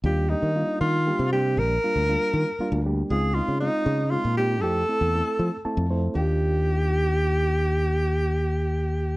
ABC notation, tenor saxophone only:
X:1
M:6/8
L:1/8
Q:3/8=79
K:Eb
V:1 name="Tenor saxophone"
G E2 F2 G | B4- B z | A F E2 F G | =A4 z2 |
G6- | G6 |]